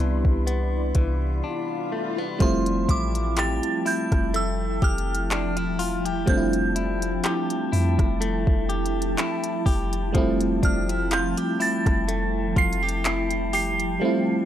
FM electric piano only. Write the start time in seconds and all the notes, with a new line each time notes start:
Already playing: G3 B3 D4 G4
2.39 G3 A3 C4
2.44 E4
6.26 G3 A3 C4
6.31 D4
6.37 E4
10.13 G3 A3 C4
10.18 E4
14.00 G3 A3 C4
14.05 E4